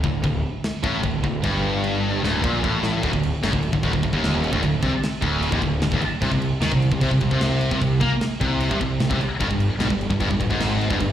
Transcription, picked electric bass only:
0.04 D1
0.23 D1
0.83 A1
1.04 D1
1.23 D1
1.44 G1
2.23 D1
2.43 A#1
2.64 A1
3.03 D1
3.13 D1
3.43 F#1
3.53 D1
3.73 D1
3.83 D1
3.93 D1
4.03 D1
4.13 D#1
4.53 D1
4.63 D1
4.82 C2
5.23 D1
5.52 D#1
5.61 D1
5.82 D1
5.92 D1
6.02 muted picked electric bass stroke
6.22 C2
6.31 C2
6.60 D#2
6.72 C2
6.92 C2
7.01 C2
7.11 C2
7.21 C2
7.31 C2
7.72 C2
7.82 C2
8.01 A#2
8.41 C2
8.71 C2
8.80 C2
9.01 C2
9.11 C2
9.19 muted picked electric bass stroke
9.41 G1
9.50 G1
9.79 B1
9.90 G1
10.10 G1
10.20 G1
10.30 G1
10.41 G1
10.51 G#1
10.91 G1
11.01 G1

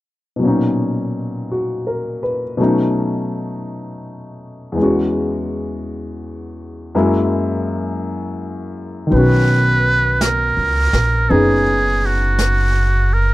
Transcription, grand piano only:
0.36 B2 F#3
0.42 A#2 C#4
0.47 D#4
1.52 F#4
1.87 A#4
2.23 B4
2.57 B2 F#3 A3 C#4
2.62 D#4
4.72 E2 E3
4.77 G#3 C#4
4.83 F#4
6.95 F#2 F#3 G#3 A#3 E4
9.07 D#3 F#3
9.13 B3 C#4
9.18 F#4
11.29 B3 C#4 D#4 G#4

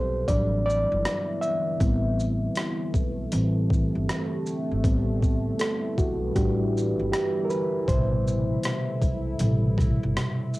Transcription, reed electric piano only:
Already playing: G3 C4 G4 A4 B4 C5
0.28 F#3 G3 D4 D5
0.66 D5
1.41 E5
1.80 G3 B3 C4
3.32 E3 G3 C4
4.84 G3 B3 C4
5.60 A4
5.98 F#4
6.36 G3 D4 F#4 G4
7.12 G4
7.45 A#4
7.50 B4
7.88 B2 C3 G3 C5
9.40 B2 C3 G3

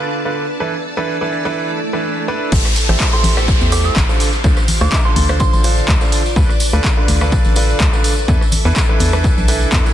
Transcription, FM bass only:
2.52 A1
2.89 A1
3.24 A1
3.61 E2
3.96 A1
4.44 D2
4.81 D2
5.16 D2
5.53 A1
5.88 D2
6.36 D2
6.73 D2
7.08 D2
7.45 A1
7.80 D2
8.28 E2
8.65 E2
9.00 E2
9.37 B1
9.72 E2

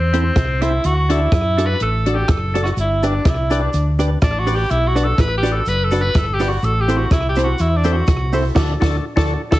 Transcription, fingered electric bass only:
Already playing: E2
0.36 C2
0.84 D2
1.32 F#2
1.81 A1
2.29 F#1
2.76 G1
3.25 C2
3.74 D2
4.22 A1
4.70 B1
5.18 A1
5.67 F#1
6.15 G1
6.63 A1
7.11 C2
7.60 E2
8.08 C2
8.56 D2
8.82 D2
9.17 D2
9.52 D2

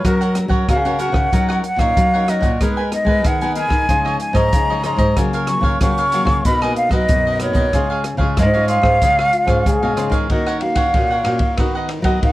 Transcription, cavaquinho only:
0.04 F#4 A#4 C#5 F#5
0.21 A#4 C#5 F#5
0.35 muted cavaquinho stroke
0.49 A#4 C#5 F#5
0.68 F#4 A#4 C#5 F#5
0.85 A#4 C#5 F#5
0.98 F#4 A#4 C#5 F#5
1.32 D#4 A#4 C#5 F#5
1.49 A#4 C#5 F#5
1.63 muted cavaquinho stroke
1.80 A#4 C#5
2.14 A#4 C#5 F#5
2.28 D#4 A#4 C#5 F#5
2.42 A#4 C#5 F#5
2.61 G#4 A#4 B4 G#5
2.77 A#4 B4 G#5
2.91 muted cavaquinho stroke
3.06 A#4 B4 G#5
3.24 G#4 A#4 B4 G#5
3.42 A#4 B4 G#5
3.56 G#4 A#4 B4 G#5
3.88 F4 G#4 C#5 D#5
4.04 G#4 C#5 D#5
4.19 muted cavaquinho stroke
4.34 G#4 C#5 D#5
4.70 G#4 C#5 D#5
4.83 F4 G#4 C#5 D#5
4.98 G#4 C#5 D#5
5.17 F#4 A#4 C#5 F5
5.34 A#4 C#5 F5
5.48 muted cavaquinho stroke
5.63 A#4 C#5 F5
5.82 F#4 A#4 C#5 F5
5.98 A#4 C#5 F5
6.12 F#4 A#4 C#5 F5
6.45 D#4 A#4 B4 D#5
6.62 A#4 B4 D#5
6.77 muted cavaquinho stroke
6.92 A#4 B4 D#5
7.27 A#4 B4 D#5
7.40 D#4 A#4 B4 D#5
7.56 A#4 B4 D#5
7.74 F4 G#4 C#5 F5
7.90 G#4 C#5 F5
8.04 muted cavaquinho stroke
8.18 G#4 C#5 F5
8.37 F4 G#4 C#5 F5
8.53 G#4 C#5 F5
8.68 F4 G#4 C#5 F5
9.01 F4 G#4 C#5 F5
9.19 G#4 C#5 F5
9.34 muted cavaquinho stroke
9.48 G#4 C#5 F5
9.83 G#4 C#5 F5
9.97 F4 G#4 C#5 F5
10.12 G#4 C#5 F5
10.30 D#4 A#4 C#5 F#5
10.46 A#4 C#5 F#5
10.61 muted cavaquinho stroke
10.76 A#4 C#5 F#5
10.93 D#4 A#4 C#5 F#5
11.10 A#4 C#5 F#5
11.24 D#4 A#4 C#5
11.58 F#4 B4 D#5 F#5
11.75 B4 D#5 F#5
11.90 muted cavaquinho stroke
12.05 B4 D#5 F#5

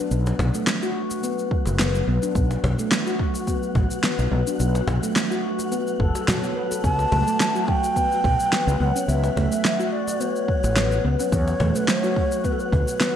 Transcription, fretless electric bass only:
0.11 B1
0.39 B1
1.67 F#1
2.07 B1
2.35 B1
2.64 B1
3.75 A1
4.19 B1
4.31 B1
4.60 B1
4.88 B1
6.00 F#1
6.84 C#2
7.12 C#2
8.24 B1
8.67 C#2
8.80 C#2
9.08 C#2
9.36 C#2
10.64 A1
11.04 C#2
11.32 E2
11.60 E2
12.72 D2

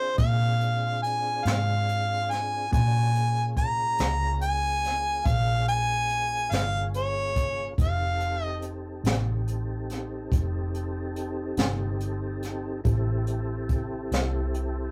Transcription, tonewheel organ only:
Already playing: C4 D4 F4 G#4
2.70 C#4 D4 F#4 A4
3.13 A#3 C#4 F4 G#4
7.78 C4 D#4 G4 A4
12.84 C4 E4 G4 A4

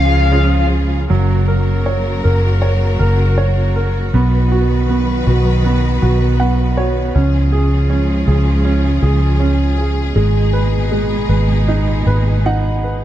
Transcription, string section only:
Already playing: C#3 F3 G#3 F4 G#4
1.10 C#3 F#3 A#3 F#4 A#4
4.13 D#3 F#3 B3 B4
7.15 C#3 F3 G#3 F4 G#4
10.16 A#2 B2 G#3 D#4

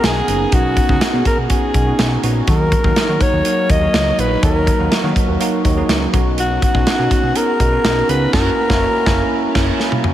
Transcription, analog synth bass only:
0.04 B1
0.28 F#1
0.52 B1
0.89 C#2
1.01 B2
1.13 B2
1.38 B2
1.74 B1
1.99 B1
2.23 A#1
2.47 D#2
2.84 D#2
2.96 D#3
3.09 D#3
3.33 D#2
3.69 D#2
3.94 C#2
4.18 A#1
4.43 D#2
4.79 D#2
4.92 D#3
5.03 D#3
5.28 D#2
5.65 D#2
5.89 C#2
6.13 B1
6.75 B1
6.87 B2
6.99 B2
7.23 B2
7.60 B1
7.84 B1
8.09 C#2
8.33 F#1
8.70 F#1
9.06 F#1
9.55 F#1

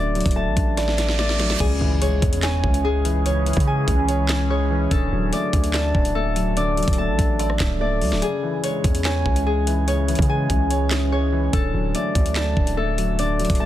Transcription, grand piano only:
Already playing: D3 F#3 A3 D4 D5
0.15 F#3
0.36 A3
0.57 D4
0.78 D5
0.98 D4
1.18 A3
1.39 F#3
1.60 C#3
1.81 E3
2.02 G#3
2.22 C#4
2.43 C#5
2.64 C#4
2.84 G#3
3.05 E3
3.25 C#3
3.46 E3
3.67 G#3
3.88 C#4
4.09 C#5
4.29 C#4
4.50 G#3
4.70 E3
4.91 D3
5.12 F#3
5.33 A3
5.53 D4
5.74 D5
5.94 D4
6.15 A3
6.36 F#3
6.57 D3
6.77 F#3
6.98 A3
7.19 D4
7.40 D5
7.60 D4
7.80 A3
8.01 F#3
8.22 C#3
8.43 E3
8.63 G#3
8.84 C#4
9.05 C#5
9.26 C#4
9.46 G#3
9.67 E3
9.87 C#3
10.08 E3
10.29 G#3
10.50 C#4
10.70 C#5
10.91 C#4
11.12 G#3
11.32 E3
11.53 D3
11.74 F#3
11.95 A3
12.15 D4
12.36 D5
12.56 D4
12.77 A3
12.98 F#3
13.19 D3
13.39 F#3
13.60 A3

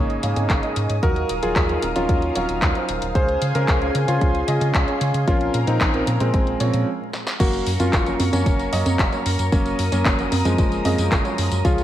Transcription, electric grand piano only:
Already playing: C#3 A#3
1.03 F#4 A#4
1.43 F4 G#4
1.96 C#4 F4
3.15 G#4 C5
3.55 C#4 A#4
4.08 C#4 F4
5.28 C#4 F4
5.67 C4 D#4
6.20 G#3 C4
7.40 A#3 F#4
7.80 C#4 F4
8.33 A#3 C#4
9.52 A#3 C#4
9.92 A#3 C#4
10.45 F3 G#3
11.65 C#4 F4

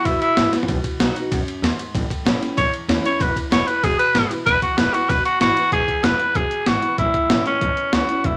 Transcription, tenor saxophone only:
0.05 E4
0.21 E4
2.57 C#5
3.06 C#5
3.22 B4
3.52 C#5
3.67 B4
3.84 G#4
3.99 B4
4.46 B4
4.63 F#4
4.78 B4
4.93 F#4
5.09 B4
5.25 F#4
5.41 F#4
5.73 G#4
6.04 B4
6.36 G#4
6.67 F#4
6.99 E4
7.47 C#4
7.94 F#4
8.25 E4

